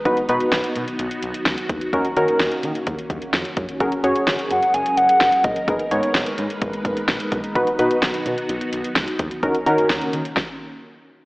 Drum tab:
HH |xxxxxxxxxxxxxxxx|xxxxxxxxxxxxxxxx|xxxxxxxxxxxxxxxx|xxxxxxxxxxxxxxxx|
SD |----o-------o---|----o-------o---|----o-------o---|----o-------o---|
BD |o-------------o-|o-------o-o---o-|o-------------o-|o-------o-o---o-|

HH |xxxxxxxxxxxxxxxx|xxxxxxxx--------|
SD |----o-------o---|----o---o-------|
BD |o-------------o-|o-------o-------|